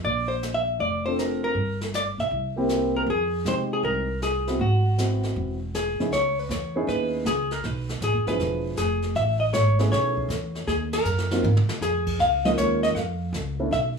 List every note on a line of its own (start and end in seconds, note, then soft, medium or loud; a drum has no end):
0.04 0.76 A#1 medium
0.04 0.30 D5 medium
0.04 brush sweep soft
0.28 0.55 C5 medium
0.43 snare medium
0.43 hi-hat pedal medium
0.54 0.80 E5 medium
0.79 1.52 F1 medium
0.79 1.04 D5 medium
0.79 brush sweep soft
1.06 1.54 C4 medium
1.06 1.54 D4 medium
1.06 1.54 F4 medium
1.06 1.55 A4 medium
1.06 1.19 C5 medium
1.19 1.43 A#4 medium
1.19 snare soft
1.19 hi-hat pedal soft
1.44 1.79 A#4 medium
1.55 2.15 G1 medium
1.55 brush sweep soft
1.81 snare soft
1.94 2.02 D5 medium
1.94 snare medium
1.94 hi-hat pedal medium
2.18 2.30 B1 medium
2.18 2.55 E5 medium
2.18 snare soft
2.31 3.03 C2 medium
2.31 brush sweep soft
2.56 3.05 A#3 medium
2.56 3.05 C4 medium
2.56 3.06 E4 medium
2.56 3.06 G4 medium
2.69 snare soft
2.69 hi-hat pedal soft
2.96 3.01 A#4 medium
3.06 3.42 F2 medium
3.06 3.47 G#4 medium
3.06 brush sweep soft
3.45 3.81 C3 medium
3.45 4.04 G#3 medium
3.45 4.04 C4 soft
3.45 4.05 D#4 medium
3.45 4.05 G4 medium
3.45 3.55 C5 loud
3.45 snare medium
3.45 hi-hat pedal medium
3.73 3.84 G#4 medium
3.83 4.56 C2 medium
3.83 4.20 A#4 medium
3.83 brush sweep soft
4.22 4.61 G#4 medium
4.22 snare medium
4.22 hi-hat pedal soft
4.47 4.59 B3 medium
4.47 4.59 C4 medium
4.47 4.59 E4 medium
4.47 4.59 F#4 medium
4.47 snare soft
4.59 5.32 G#1 medium
4.59 5.70 F#4 medium
4.59 brush sweep soft
4.98 5.56 B3 medium
4.98 5.56 C4 medium
4.98 5.57 E4 medium
4.98 5.57 F#4 medium
4.98 snare medium
4.98 hi-hat pedal medium
5.23 snare soft
5.36 5.95 E1 medium
5.36 brush sweep soft
5.74 6.10 G#4 medium
5.74 snare medium
5.74 hi-hat pedal soft
5.99 6.11 C#3 medium
5.99 6.11 B3 medium
5.99 6.11 D#4 medium
5.99 6.12 E4 medium
5.99 6.12 G#4 medium
5.99 muted upright bass stroke soft
5.99 snare soft
6.11 6.48 C#2 medium
6.11 6.39 C#5 medium
6.11 brush sweep soft
6.11 snare soft
6.39 6.52 B4 medium
6.49 6.86 E2 medium
6.49 6.90 C#5 medium
6.49 snare medium
6.49 hi-hat pedal medium
6.76 7.23 B3 medium
6.76 7.24 C#4 medium
6.76 7.24 D#4 medium
6.76 7.24 E4 medium
6.76 7.24 G#4 medium
6.87 7.24 D#2 medium
6.87 7.24 B4 medium
6.87 brush sweep soft
6.87 snare soft
7.25 7.62 C#2 medium
7.25 7.52 G#4 medium
7.25 snare medium
7.25 hi-hat pedal soft
7.51 7.65 A#4 medium
7.51 snare soft
7.64 8.00 B1 medium
7.64 7.91 B4 medium
7.64 brush sweep soft
7.64 snare soft
7.89 8.03 A4 medium
7.89 snare soft
8.01 8.15 A1 medium
8.01 8.26 G#4 medium
8.01 snare medium
8.01 hi-hat pedal medium
8.14 8.26 F#1 medium
8.27 8.39 D1 medium
8.27 8.75 F3 medium
8.27 8.75 B3 medium
8.27 8.75 D4 medium
8.27 8.76 E4 medium
8.27 8.76 G#4 medium
8.27 8.77 B4 medium
8.27 snare soft
8.39 8.76 E1 medium
8.39 brush sweep soft
8.39 snare soft
8.77 9.15 F1 medium
8.77 9.13 G#4 medium
8.77 snare medium
8.77 hi-hat pedal soft
9.02 snare soft
9.15 9.52 A1 medium
9.15 9.39 E5 medium
9.15 brush sweep soft
9.15 snare soft
9.40 9.45 D#5 medium
9.53 9.90 G#1 medium
9.53 9.79 C#5 medium
9.53 snare medium
9.53 hi-hat pedal medium
9.79 10.27 A3 medium
9.79 10.27 B3 medium
9.79 10.27 C#4 medium
9.79 10.28 E4 medium
9.79 10.28 G#4 medium
9.79 9.91 B4 medium
9.79 snare soft
9.91 10.28 B1 medium
9.91 10.70 C#5 medium
9.91 brush sweep soft
9.91 snare soft
10.17 kick medium
10.29 10.66 E2 medium
10.29 snare medium
10.29 hi-hat pedal soft
10.55 snare soft
10.67 11.04 D#2 medium
10.67 10.74 G#4 medium
10.67 brush sweep soft
10.67 snare soft
10.93 11.82 A#4 medium
10.93 snare medium
10.93 ride medium
11.05 11.42 F#2 medium
11.05 hi-hat pedal medium
11.18 snare soft
11.31 11.42 F#3 medium
11.31 11.43 A#3 medium
11.31 11.43 C4 medium
11.31 11.43 D#4 medium
11.31 11.43 F4 medium
11.31 snare medium
11.43 11.67 G#2 medium
11.43 high tom medium
11.57 mid tom medium
11.68 muted upright bass stroke soft
11.68 snare medium
11.81 12.18 F2 medium
11.81 12.21 G#4 medium
11.81 snare medium
11.81 hi-hat pedal soft
12.07 kick medium
12.07 crash medium
12.19 12.56 C#2 medium
12.19 12.45 F5 medium
12.19 brush sweep soft
12.19 snare soft
12.45 12.93 G#3 medium
12.45 12.93 A#3 medium
12.45 12.93 C#4 medium
12.45 12.94 D#4 medium
12.45 12.94 F4 medium
12.45 12.50 D#5 medium
12.45 snare medium
12.57 12.94 D#2 medium
12.57 12.83 C#5 medium
12.57 snare medium
12.57 hi-hat pedal medium
12.83 12.88 D#5 medium
12.83 snare soft
12.95 13.32 F2 medium
12.95 13.72 F5 loud
12.95 brush sweep soft
12.95 snare soft
13.33 13.70 C#2 medium
13.33 snare medium
13.33 hi-hat pedal soft
13.59 13.71 A3 medium
13.59 13.71 B3 medium
13.59 13.71 C#4 medium
13.59 13.71 D4 medium
13.59 13.71 E4 medium
13.71 13.98 B1 medium
13.71 13.79 E5 loud
13.71 brush sweep soft
13.71 snare soft